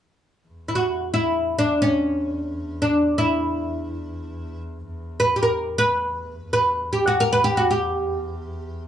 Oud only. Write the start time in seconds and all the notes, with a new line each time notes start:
0.68 E4
0.75 F#4
1.14 E4
1.59 D4
1.82 C#4
2.82 D4
3.18 E4
5.20 B4
5.36 G4
5.43 A#4
5.78 B4
6.53 B4
6.93 G4
7.08 F#4
7.20 A#4
7.33 B4
7.44 G4
7.57 F#4
7.71 G4